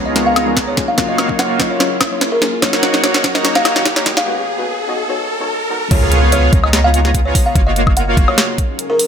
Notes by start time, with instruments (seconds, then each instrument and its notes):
Already playing: 808-style bass C#2, ambient pad C#3 G#3 B3 D#4, synth pluck F3 G#3 B3 C#4 B4, supersaw synth B3 F4 G#4 C#5 A#5, riser
0.06 kalimba D#5
0.15 synth pluck F3 G#3 B3 C#4 A#4, snare, closed hi-hat
0.26 kalimba F5
0.36 snare, closed hi-hat, high woodblock
0.46 synth pluck F3 G#3 B3 C#4 A#4
0.57 kick, snare, closed hi-hat
0.68 kalimba C#5
0.76 synth pluck F#3 A#3 C#4 F4 G#4, ambient pad F#3 C#4 G#4 A#4, kick, snare, closed hi-hat
0.88 kalimba F5
0.97 808-style bass F#1, synth pluck F#3 A#3 C#4 F4 A#4, supersaw synth A#3 F4 F#4 C#5 F5, kick, snare, closed hi-hat
1.09 kalimba D#5
1.18 snare, closed hi-hat, high woodblock
1.28 synth pluck F#3 A#3 C#4 F4 A#4, kick
1.39 kalimba F#5, snare, closed hi-hat
1.59 808-style bass F#1, synth pluck F#3 A#3 C#4 F4 D#5, supersaw synth A#3 F4 F#4 C#5 F5, kick, snare, closed hi-hat
1.70 kalimba C#5
1.79 synth pluck F#3 A#3 C#4 F4 C#5, snare, closed hi-hat
2.01 kick, snare, closed hi-hat, high woodblock
2.10 synth pluck F#3 A#3 C#4 F4 C#5
2.21 snare, closed hi-hat
2.32 kalimba A#4
2.41 ambient pad D#3 A#3 F#4, synth pluck F#3 A#3 C#4 D#4 G#4, snare, closed hi-hat
2.62 808-style bass D#1, synth pluck F#3 A#3 C#4 D#4 A#4, supersaw synth A#3 D#4 F#4 C#5 F#5, kalimba C#5, kick, snare, closed hi-hat
2.73 snare
2.83 snare, closed hi-hat
2.93 synth pluck F#3 A#3 C#4 D#4 A#4, snare
3.03 kalimba C#5, snare, closed hi-hat
3.14 snare
3.23 808-style bass D#1, synth pluck F#3 A#3 C#4 D#4 D#5, supersaw synth A#3 D#4 F#4 C#5 A#5, kick, snare, closed hi-hat
3.35 kalimba D#5, snare
3.44 synth pluck F#3 A#3 C#4 D#4 C#5, snare, closed hi-hat
3.55 kalimba F5, snare
3.65 snare, closed hi-hat, high woodblock
3.75 synth pluck F#3 A#3 C#4 D#4 C#5, snare
3.85 kick, snare, closed hi-hat
3.96 kalimba C#5, snare
4.05 synth pluck G#3 B3 D#4 F#4 A#4, kick, snare, closed hi-hat
4.17 kalimba F5, snare
4.26 synth pluck G#3 B3 D#4 F#4 B4
4.57 synth pluck G#3 B3 D#4 F#4 B4
4.87 synth pluck G#3 B3 D#4 F#4 D#5
5.08 synth pluck G#3 B3 D#4 F#4 C#5
5.39 synth pluck G#3 B3 D#4 F#4 C#5
5.69 synth pluck G#3 B3 D#4 F#4 A#4
5.91 808-style bass C#2, ambient pad C#3 G#3 B3 D#4 F4, supersaw synth B3 F4 G#4 C#5 F5, kalimba C#5, kick, closed hi-hat, crash, impact
6.12 closed hi-hat
6.32 kalimba C#5, closed hi-hat
6.53 808-style bass C#2, supersaw synth B3 F4 G#4 C#5 A#5, kick, closed hi-hat
6.64 kalimba D#5, high woodblock
6.73 snare, closed hi-hat
6.84 kalimba F5
6.94 closed hi-hat
7.05 snare
7.14 kick, closed hi-hat
7.25 kalimba C#5
7.35 ambient pad F#3 C#4 G#4 A#4, kick, open hi-hat
7.46 kalimba F5
7.55 808-style bass F#1, supersaw synth A#3 F4 F#4 C#5 F5, kick, closed hi-hat
7.67 kalimba D#5
7.76 closed hi-hat
7.87 kick, high woodblock
7.97 kalimba F#5, closed hi-hat
8.17 808-style bass F#1, supersaw synth A#3 F4 F#4 C#5 F5, kick, closed hi-hat
8.28 kalimba C#5, high woodblock
8.38 snare, closed hi-hat
8.58 kick, closed hi-hat
8.79 closed hi-hat
8.90 kalimba A#4
8.99 open hi-hat